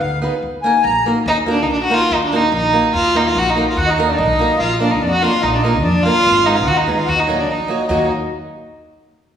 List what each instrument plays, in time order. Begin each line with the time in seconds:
0.00 upright bass D2, accordion F5
0.22 nylon-string guitar B3 D#4 G#4 B4
0.42 upright bass D#2
0.62 nylon-string guitar A#3 D#4 F#4, accordion G#5
0.66 nylon-string guitar A#4
0.83 upright bass A#1, accordion A#5
1.06 nylon-string guitar A#3 D#4 F#4 A#4
1.26 upright bass D#2, violin D#4
1.46 nylon-string guitar A#3 D#4 F#4 A#4
1.51 violin D4
1.63 violin D#4
1.69 upright bass A#1, violin D4
1.84 violin F#4
1.90 nylon-string guitar A#3 D#4 F#4 A#4
1.94 violin F4
2.10 upright bass D#2
2.14 violin D#4
2.25 violin D4
2.32 nylon-string guitar A#3 D#4 F#4 A#4, violin D#4
2.52 upright bass A#1
2.56 violin D#4
2.73 nylon-string guitar A#3 D#4 F#4 A#4
2.94 upright bass D#2, violin F4
3.15 nylon-string guitar A#3 D#4 F#4 A#4, violin D#4
3.27 violin F4
3.35 upright bass A#1, violin F#4
3.50 violin D#4
3.55 nylon-string guitar A#3 D#4 F#4 A#4
3.71 violin F4
3.77 upright bass D#2, violin F#4, accordion F#5
3.87 violin D#4, accordion D#5
3.98 nylon-string guitar A#3 D#4 F#4 A#4
4.07 violin D4, accordion D5 D#5
4.13 violin D4 D#4, accordion D5
4.17 upright bass B1, violin D#4, accordion D#5
4.39 nylon-string guitar A#3 D#4 F#4 A#4
4.58 upright bass A#1, violin F4, accordion F5
4.80 nylon-string guitar A#3 D4 F4 A#4, violin D4, accordion D5
4.91 violin D#4, accordion D#5
5.01 upright bass F2, violin D4, accordion D5
5.10 violin F#4, accordion F#5
5.21 nylon-string guitar A#3 D4 F4 A#4, violin F4, accordion F5
5.41 upright bass A#1, violin D#4, accordion D#5
5.52 violin D4, accordion D5
5.62 nylon-string guitar A#3 D4 F4, violin D#4, accordion D#5
5.66 nylon-string guitar A#4
5.83 upright bass F2, violin D4, accordion D5
6.03 nylon-string guitar A#3 D4 F4, violin F4, accordion F5
6.07 nylon-string guitar A#4
6.26 upright bass G#1
6.44 nylon-string guitar G#3 B3 D#4, violin D#4, accordion D#5
6.49 nylon-string guitar G#4
6.53 violin F4, accordion F5
6.64 upright bass D#2, accordion F#5
6.68 violin F#4
6.75 violin D#4, accordion D#5
6.86 nylon-string guitar G#3 B3 D#4 G#4
6.96 violin F4, accordion F5
7.05 upright bass D#2, violin F#4, accordion F#5
7.16 violin D#4, accordion D#5
7.27 nylon-string guitar F#3 A#3 D#4 F#4
7.36 violin D4, accordion D5
7.47 upright bass A#1, accordion D#5
7.51 violin D#4
7.68 nylon-string guitar F#3 A#3 D#4 F#4
7.88 upright bass D#2, nylon-string guitar F#3 A#3 D#4 F#4, violin D#4, accordion D#5